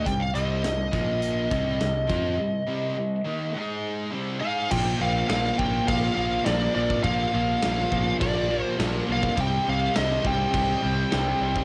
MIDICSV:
0, 0, Header, 1, 6, 480
1, 0, Start_track
1, 0, Tempo, 581959
1, 48, Time_signature, 4, 2, 24, 8
1, 9602, End_track
2, 0, Start_track
2, 0, Title_t, "Lead electric guitar"
2, 0, Program_c, 0, 29
2, 49, Note_on_c, 0, 79, 105
2, 162, Note_on_c, 0, 77, 76
2, 172, Note_off_c, 0, 79, 0
2, 285, Note_off_c, 0, 77, 0
2, 288, Note_on_c, 0, 75, 66
2, 3378, Note_off_c, 0, 75, 0
2, 3632, Note_on_c, 0, 77, 94
2, 3883, Note_on_c, 0, 79, 107
2, 3889, Note_off_c, 0, 77, 0
2, 4134, Note_off_c, 0, 79, 0
2, 4136, Note_on_c, 0, 77, 83
2, 4355, Note_off_c, 0, 77, 0
2, 4365, Note_on_c, 0, 77, 97
2, 4605, Note_on_c, 0, 79, 101
2, 4615, Note_off_c, 0, 77, 0
2, 4831, Note_off_c, 0, 79, 0
2, 4846, Note_on_c, 0, 77, 90
2, 5060, Note_off_c, 0, 77, 0
2, 5070, Note_on_c, 0, 77, 86
2, 5320, Note_off_c, 0, 77, 0
2, 5323, Note_on_c, 0, 74, 87
2, 5557, Note_off_c, 0, 74, 0
2, 5567, Note_on_c, 0, 74, 91
2, 5797, Note_off_c, 0, 74, 0
2, 5801, Note_on_c, 0, 77, 103
2, 6731, Note_off_c, 0, 77, 0
2, 6767, Note_on_c, 0, 74, 75
2, 7114, Note_off_c, 0, 74, 0
2, 7114, Note_on_c, 0, 72, 75
2, 7214, Note_off_c, 0, 72, 0
2, 7525, Note_on_c, 0, 77, 108
2, 7752, Note_off_c, 0, 77, 0
2, 7758, Note_on_c, 0, 79, 118
2, 7989, Note_off_c, 0, 79, 0
2, 7995, Note_on_c, 0, 77, 89
2, 8215, Note_off_c, 0, 77, 0
2, 8219, Note_on_c, 0, 75, 101
2, 8459, Note_off_c, 0, 75, 0
2, 8468, Note_on_c, 0, 79, 109
2, 9602, Note_off_c, 0, 79, 0
2, 9602, End_track
3, 0, Start_track
3, 0, Title_t, "Tonewheel organ"
3, 0, Program_c, 1, 16
3, 3896, Note_on_c, 1, 72, 71
3, 3898, Note_on_c, 1, 58, 68
3, 3901, Note_on_c, 1, 65, 60
3, 5795, Note_off_c, 1, 65, 0
3, 5812, Note_on_c, 1, 67, 61
3, 7696, Note_off_c, 1, 72, 0
3, 7697, Note_off_c, 1, 58, 0
3, 7707, Note_off_c, 1, 67, 0
3, 7717, Note_on_c, 1, 67, 64
3, 7720, Note_on_c, 1, 60, 67
3, 7729, Note_on_c, 1, 75, 77
3, 9602, Note_off_c, 1, 60, 0
3, 9602, Note_off_c, 1, 67, 0
3, 9602, Note_off_c, 1, 75, 0
3, 9602, End_track
4, 0, Start_track
4, 0, Title_t, "Distorted electric guitar"
4, 0, Program_c, 2, 30
4, 62, Note_on_c, 2, 48, 59
4, 64, Note_on_c, 2, 55, 61
4, 247, Note_off_c, 2, 48, 0
4, 248, Note_off_c, 2, 55, 0
4, 293, Note_on_c, 2, 48, 82
4, 299, Note_on_c, 2, 55, 88
4, 303, Note_on_c, 2, 60, 93
4, 523, Note_off_c, 2, 48, 0
4, 526, Note_off_c, 2, 55, 0
4, 528, Note_off_c, 2, 60, 0
4, 536, Note_on_c, 2, 48, 59
4, 540, Note_on_c, 2, 55, 65
4, 724, Note_off_c, 2, 48, 0
4, 726, Note_off_c, 2, 55, 0
4, 774, Note_on_c, 2, 46, 71
4, 780, Note_on_c, 2, 53, 68
4, 785, Note_on_c, 2, 58, 76
4, 1244, Note_off_c, 2, 46, 0
4, 1247, Note_off_c, 2, 53, 0
4, 1250, Note_off_c, 2, 58, 0
4, 1251, Note_on_c, 2, 48, 89
4, 1259, Note_on_c, 2, 55, 90
4, 1263, Note_on_c, 2, 60, 101
4, 1483, Note_off_c, 2, 48, 0
4, 1487, Note_off_c, 2, 55, 0
4, 1489, Note_off_c, 2, 60, 0
4, 1495, Note_on_c, 2, 48, 53
4, 1499, Note_on_c, 2, 55, 54
4, 1684, Note_off_c, 2, 48, 0
4, 1686, Note_off_c, 2, 55, 0
4, 1735, Note_on_c, 2, 53, 88
4, 1740, Note_on_c, 2, 60, 99
4, 1744, Note_on_c, 2, 65, 103
4, 1965, Note_off_c, 2, 53, 0
4, 1968, Note_off_c, 2, 60, 0
4, 1969, Note_off_c, 2, 65, 0
4, 1981, Note_on_c, 2, 48, 55
4, 1988, Note_on_c, 2, 55, 67
4, 2167, Note_off_c, 2, 48, 0
4, 2171, Note_off_c, 2, 55, 0
4, 2209, Note_on_c, 2, 48, 86
4, 2213, Note_on_c, 2, 55, 81
4, 2218, Note_on_c, 2, 60, 90
4, 2442, Note_off_c, 2, 48, 0
4, 2445, Note_off_c, 2, 55, 0
4, 2447, Note_off_c, 2, 60, 0
4, 2452, Note_on_c, 2, 48, 56
4, 2455, Note_on_c, 2, 55, 58
4, 2643, Note_off_c, 2, 48, 0
4, 2645, Note_off_c, 2, 55, 0
4, 2687, Note_on_c, 2, 51, 68
4, 2693, Note_on_c, 2, 63, 75
4, 2695, Note_on_c, 2, 58, 85
4, 2922, Note_off_c, 2, 51, 0
4, 2924, Note_off_c, 2, 63, 0
4, 2926, Note_off_c, 2, 58, 0
4, 2931, Note_on_c, 2, 56, 88
4, 2934, Note_on_c, 2, 63, 88
4, 2940, Note_on_c, 2, 68, 97
4, 3403, Note_on_c, 2, 48, 80
4, 3404, Note_off_c, 2, 56, 0
4, 3406, Note_off_c, 2, 63, 0
4, 3408, Note_off_c, 2, 68, 0
4, 3411, Note_on_c, 2, 55, 90
4, 3411, Note_on_c, 2, 60, 82
4, 3639, Note_off_c, 2, 55, 0
4, 3640, Note_off_c, 2, 48, 0
4, 3642, Note_off_c, 2, 60, 0
4, 3643, Note_on_c, 2, 56, 78
4, 3645, Note_on_c, 2, 68, 96
4, 3646, Note_on_c, 2, 63, 88
4, 3879, Note_on_c, 2, 46, 89
4, 3880, Note_off_c, 2, 56, 0
4, 3881, Note_off_c, 2, 63, 0
4, 3881, Note_off_c, 2, 68, 0
4, 3884, Note_on_c, 2, 53, 95
4, 3891, Note_on_c, 2, 58, 109
4, 4124, Note_off_c, 2, 46, 0
4, 4127, Note_off_c, 2, 53, 0
4, 4128, Note_on_c, 2, 46, 76
4, 4130, Note_on_c, 2, 53, 92
4, 4133, Note_off_c, 2, 58, 0
4, 4136, Note_on_c, 2, 58, 92
4, 4350, Note_off_c, 2, 46, 0
4, 4353, Note_on_c, 2, 46, 88
4, 4354, Note_off_c, 2, 53, 0
4, 4357, Note_on_c, 2, 53, 91
4, 4360, Note_off_c, 2, 58, 0
4, 4364, Note_on_c, 2, 58, 92
4, 4592, Note_off_c, 2, 46, 0
4, 4595, Note_on_c, 2, 46, 74
4, 4599, Note_off_c, 2, 53, 0
4, 4602, Note_off_c, 2, 58, 0
4, 4603, Note_on_c, 2, 53, 74
4, 4605, Note_on_c, 2, 58, 78
4, 4830, Note_off_c, 2, 46, 0
4, 4836, Note_off_c, 2, 53, 0
4, 4837, Note_off_c, 2, 58, 0
4, 4840, Note_on_c, 2, 46, 101
4, 4846, Note_on_c, 2, 53, 92
4, 4847, Note_on_c, 2, 58, 117
4, 5059, Note_off_c, 2, 46, 0
4, 5066, Note_off_c, 2, 53, 0
4, 5069, Note_on_c, 2, 46, 94
4, 5071, Note_off_c, 2, 58, 0
4, 5075, Note_on_c, 2, 53, 99
4, 5081, Note_on_c, 2, 58, 98
4, 5303, Note_off_c, 2, 46, 0
4, 5310, Note_off_c, 2, 53, 0
4, 5310, Note_off_c, 2, 58, 0
4, 5313, Note_on_c, 2, 46, 83
4, 5320, Note_on_c, 2, 53, 104
4, 5320, Note_on_c, 2, 58, 96
4, 5548, Note_off_c, 2, 46, 0
4, 5554, Note_off_c, 2, 53, 0
4, 5557, Note_on_c, 2, 46, 85
4, 5559, Note_off_c, 2, 58, 0
4, 5564, Note_on_c, 2, 53, 101
4, 5569, Note_on_c, 2, 58, 98
4, 5796, Note_off_c, 2, 46, 0
4, 5801, Note_off_c, 2, 53, 0
4, 5806, Note_on_c, 2, 46, 96
4, 5808, Note_off_c, 2, 58, 0
4, 5811, Note_on_c, 2, 53, 91
4, 5818, Note_on_c, 2, 58, 100
4, 6039, Note_off_c, 2, 46, 0
4, 6042, Note_off_c, 2, 53, 0
4, 6047, Note_off_c, 2, 58, 0
4, 6048, Note_on_c, 2, 46, 85
4, 6052, Note_on_c, 2, 53, 80
4, 6057, Note_on_c, 2, 58, 94
4, 6274, Note_off_c, 2, 46, 0
4, 6282, Note_off_c, 2, 53, 0
4, 6284, Note_off_c, 2, 58, 0
4, 6284, Note_on_c, 2, 46, 81
4, 6292, Note_on_c, 2, 53, 98
4, 6294, Note_on_c, 2, 58, 108
4, 6516, Note_off_c, 2, 46, 0
4, 6521, Note_off_c, 2, 53, 0
4, 6525, Note_off_c, 2, 58, 0
4, 6525, Note_on_c, 2, 46, 81
4, 6531, Note_on_c, 2, 53, 77
4, 6535, Note_on_c, 2, 58, 89
4, 6749, Note_off_c, 2, 46, 0
4, 6752, Note_off_c, 2, 53, 0
4, 6758, Note_off_c, 2, 58, 0
4, 6758, Note_on_c, 2, 46, 85
4, 6761, Note_on_c, 2, 53, 115
4, 6768, Note_on_c, 2, 58, 120
4, 6994, Note_off_c, 2, 46, 0
4, 6999, Note_off_c, 2, 58, 0
4, 7001, Note_off_c, 2, 53, 0
4, 7004, Note_on_c, 2, 46, 90
4, 7009, Note_on_c, 2, 58, 97
4, 7011, Note_on_c, 2, 53, 92
4, 7235, Note_off_c, 2, 46, 0
4, 7238, Note_off_c, 2, 53, 0
4, 7243, Note_off_c, 2, 58, 0
4, 7244, Note_on_c, 2, 46, 101
4, 7248, Note_on_c, 2, 53, 98
4, 7253, Note_on_c, 2, 58, 88
4, 7482, Note_off_c, 2, 46, 0
4, 7484, Note_off_c, 2, 53, 0
4, 7485, Note_off_c, 2, 58, 0
4, 7492, Note_on_c, 2, 46, 92
4, 7494, Note_on_c, 2, 53, 84
4, 7495, Note_on_c, 2, 58, 95
4, 7715, Note_off_c, 2, 46, 0
4, 7716, Note_off_c, 2, 53, 0
4, 7716, Note_off_c, 2, 58, 0
4, 7733, Note_on_c, 2, 48, 97
4, 7733, Note_on_c, 2, 55, 101
4, 7739, Note_on_c, 2, 60, 106
4, 7968, Note_off_c, 2, 48, 0
4, 7972, Note_on_c, 2, 48, 88
4, 7976, Note_off_c, 2, 55, 0
4, 7979, Note_on_c, 2, 55, 86
4, 7981, Note_off_c, 2, 60, 0
4, 7985, Note_on_c, 2, 60, 94
4, 8208, Note_off_c, 2, 48, 0
4, 8211, Note_on_c, 2, 48, 94
4, 8213, Note_off_c, 2, 55, 0
4, 8214, Note_off_c, 2, 60, 0
4, 8216, Note_on_c, 2, 55, 103
4, 8217, Note_on_c, 2, 60, 100
4, 8445, Note_off_c, 2, 48, 0
4, 8450, Note_off_c, 2, 55, 0
4, 8455, Note_on_c, 2, 48, 79
4, 8460, Note_off_c, 2, 60, 0
4, 8460, Note_on_c, 2, 55, 79
4, 8463, Note_on_c, 2, 60, 87
4, 8676, Note_off_c, 2, 48, 0
4, 8676, Note_off_c, 2, 55, 0
4, 8686, Note_on_c, 2, 48, 102
4, 8686, Note_on_c, 2, 55, 111
4, 8689, Note_off_c, 2, 60, 0
4, 8693, Note_on_c, 2, 60, 119
4, 8913, Note_off_c, 2, 48, 0
4, 8918, Note_off_c, 2, 55, 0
4, 8923, Note_on_c, 2, 48, 84
4, 8925, Note_off_c, 2, 60, 0
4, 8928, Note_on_c, 2, 55, 101
4, 8929, Note_on_c, 2, 60, 99
4, 9154, Note_off_c, 2, 48, 0
4, 9158, Note_off_c, 2, 55, 0
4, 9163, Note_on_c, 2, 48, 79
4, 9167, Note_on_c, 2, 55, 99
4, 9171, Note_off_c, 2, 60, 0
4, 9175, Note_on_c, 2, 60, 112
4, 9395, Note_off_c, 2, 48, 0
4, 9396, Note_off_c, 2, 55, 0
4, 9405, Note_on_c, 2, 48, 85
4, 9406, Note_on_c, 2, 55, 93
4, 9408, Note_off_c, 2, 60, 0
4, 9411, Note_on_c, 2, 60, 85
4, 9602, Note_off_c, 2, 48, 0
4, 9602, Note_off_c, 2, 55, 0
4, 9602, Note_off_c, 2, 60, 0
4, 9602, End_track
5, 0, Start_track
5, 0, Title_t, "Picked electric bass"
5, 0, Program_c, 3, 34
5, 50, Note_on_c, 3, 36, 67
5, 272, Note_off_c, 3, 36, 0
5, 298, Note_on_c, 3, 36, 84
5, 517, Note_off_c, 3, 36, 0
5, 537, Note_on_c, 3, 36, 73
5, 756, Note_off_c, 3, 36, 0
5, 768, Note_on_c, 3, 34, 74
5, 1216, Note_off_c, 3, 34, 0
5, 1247, Note_on_c, 3, 36, 83
5, 1471, Note_off_c, 3, 36, 0
5, 1495, Note_on_c, 3, 36, 73
5, 1715, Note_off_c, 3, 36, 0
5, 1728, Note_on_c, 3, 41, 78
5, 1952, Note_off_c, 3, 41, 0
5, 3892, Note_on_c, 3, 34, 87
5, 4062, Note_off_c, 3, 34, 0
5, 4135, Note_on_c, 3, 34, 85
5, 4304, Note_off_c, 3, 34, 0
5, 4369, Note_on_c, 3, 34, 77
5, 4540, Note_off_c, 3, 34, 0
5, 4618, Note_on_c, 3, 34, 86
5, 4786, Note_off_c, 3, 34, 0
5, 4851, Note_on_c, 3, 34, 84
5, 5021, Note_off_c, 3, 34, 0
5, 5092, Note_on_c, 3, 34, 79
5, 5262, Note_off_c, 3, 34, 0
5, 5333, Note_on_c, 3, 34, 77
5, 5502, Note_off_c, 3, 34, 0
5, 5575, Note_on_c, 3, 34, 80
5, 5743, Note_off_c, 3, 34, 0
5, 5809, Note_on_c, 3, 34, 89
5, 5980, Note_off_c, 3, 34, 0
5, 6060, Note_on_c, 3, 34, 93
5, 6226, Note_off_c, 3, 34, 0
5, 6307, Note_on_c, 3, 34, 92
5, 6470, Note_off_c, 3, 34, 0
5, 6535, Note_on_c, 3, 34, 82
5, 6703, Note_off_c, 3, 34, 0
5, 6774, Note_on_c, 3, 34, 78
5, 7112, Note_off_c, 3, 34, 0
5, 7254, Note_on_c, 3, 34, 90
5, 7422, Note_off_c, 3, 34, 0
5, 7498, Note_on_c, 3, 35, 84
5, 7664, Note_off_c, 3, 35, 0
5, 7737, Note_on_c, 3, 36, 82
5, 7904, Note_off_c, 3, 36, 0
5, 7987, Note_on_c, 3, 36, 85
5, 8150, Note_off_c, 3, 36, 0
5, 8230, Note_on_c, 3, 36, 84
5, 8392, Note_off_c, 3, 36, 0
5, 8452, Note_on_c, 3, 36, 95
5, 8620, Note_off_c, 3, 36, 0
5, 8693, Note_on_c, 3, 36, 89
5, 8861, Note_off_c, 3, 36, 0
5, 8948, Note_on_c, 3, 36, 77
5, 9110, Note_off_c, 3, 36, 0
5, 9182, Note_on_c, 3, 36, 92
5, 9346, Note_off_c, 3, 36, 0
5, 9409, Note_on_c, 3, 36, 75
5, 9577, Note_off_c, 3, 36, 0
5, 9602, End_track
6, 0, Start_track
6, 0, Title_t, "Drums"
6, 52, Note_on_c, 9, 42, 77
6, 53, Note_on_c, 9, 36, 80
6, 135, Note_off_c, 9, 36, 0
6, 135, Note_off_c, 9, 42, 0
6, 289, Note_on_c, 9, 42, 61
6, 371, Note_off_c, 9, 42, 0
6, 530, Note_on_c, 9, 42, 83
6, 531, Note_on_c, 9, 38, 102
6, 612, Note_off_c, 9, 42, 0
6, 613, Note_off_c, 9, 38, 0
6, 767, Note_on_c, 9, 42, 57
6, 769, Note_on_c, 9, 36, 89
6, 849, Note_off_c, 9, 42, 0
6, 851, Note_off_c, 9, 36, 0
6, 1006, Note_on_c, 9, 42, 82
6, 1088, Note_off_c, 9, 42, 0
6, 1248, Note_on_c, 9, 36, 111
6, 1250, Note_on_c, 9, 42, 66
6, 1331, Note_off_c, 9, 36, 0
6, 1332, Note_off_c, 9, 42, 0
6, 1490, Note_on_c, 9, 42, 72
6, 1491, Note_on_c, 9, 38, 85
6, 1572, Note_off_c, 9, 42, 0
6, 1573, Note_off_c, 9, 38, 0
6, 1728, Note_on_c, 9, 42, 54
6, 1729, Note_on_c, 9, 36, 89
6, 1810, Note_off_c, 9, 42, 0
6, 1811, Note_off_c, 9, 36, 0
6, 3884, Note_on_c, 9, 49, 98
6, 3884, Note_on_c, 9, 57, 55
6, 3889, Note_on_c, 9, 36, 91
6, 3967, Note_off_c, 9, 49, 0
6, 3967, Note_off_c, 9, 57, 0
6, 3972, Note_off_c, 9, 36, 0
6, 4368, Note_on_c, 9, 57, 66
6, 4369, Note_on_c, 9, 38, 114
6, 4450, Note_off_c, 9, 57, 0
6, 4451, Note_off_c, 9, 38, 0
6, 4612, Note_on_c, 9, 36, 80
6, 4694, Note_off_c, 9, 36, 0
6, 4853, Note_on_c, 9, 36, 122
6, 4853, Note_on_c, 9, 57, 64
6, 4935, Note_off_c, 9, 36, 0
6, 4935, Note_off_c, 9, 57, 0
6, 5329, Note_on_c, 9, 38, 106
6, 5329, Note_on_c, 9, 57, 61
6, 5411, Note_off_c, 9, 57, 0
6, 5412, Note_off_c, 9, 38, 0
6, 5692, Note_on_c, 9, 36, 75
6, 5774, Note_off_c, 9, 36, 0
6, 5804, Note_on_c, 9, 57, 49
6, 5810, Note_on_c, 9, 36, 92
6, 5887, Note_off_c, 9, 57, 0
6, 5892, Note_off_c, 9, 36, 0
6, 6289, Note_on_c, 9, 57, 68
6, 6290, Note_on_c, 9, 38, 113
6, 6371, Note_off_c, 9, 57, 0
6, 6372, Note_off_c, 9, 38, 0
6, 6531, Note_on_c, 9, 36, 82
6, 6614, Note_off_c, 9, 36, 0
6, 6773, Note_on_c, 9, 36, 117
6, 6774, Note_on_c, 9, 57, 63
6, 6855, Note_off_c, 9, 36, 0
6, 6856, Note_off_c, 9, 57, 0
6, 7256, Note_on_c, 9, 57, 67
6, 7257, Note_on_c, 9, 38, 99
6, 7339, Note_off_c, 9, 38, 0
6, 7339, Note_off_c, 9, 57, 0
6, 7613, Note_on_c, 9, 36, 87
6, 7696, Note_off_c, 9, 36, 0
6, 7733, Note_on_c, 9, 36, 88
6, 7735, Note_on_c, 9, 57, 55
6, 7815, Note_off_c, 9, 36, 0
6, 7818, Note_off_c, 9, 57, 0
6, 8212, Note_on_c, 9, 57, 65
6, 8213, Note_on_c, 9, 38, 114
6, 8295, Note_off_c, 9, 57, 0
6, 8296, Note_off_c, 9, 38, 0
6, 8452, Note_on_c, 9, 36, 82
6, 8534, Note_off_c, 9, 36, 0
6, 8691, Note_on_c, 9, 57, 65
6, 8692, Note_on_c, 9, 36, 120
6, 8773, Note_off_c, 9, 57, 0
6, 8775, Note_off_c, 9, 36, 0
6, 9172, Note_on_c, 9, 57, 53
6, 9173, Note_on_c, 9, 38, 106
6, 9254, Note_off_c, 9, 57, 0
6, 9255, Note_off_c, 9, 38, 0
6, 9532, Note_on_c, 9, 36, 86
6, 9602, Note_off_c, 9, 36, 0
6, 9602, End_track
0, 0, End_of_file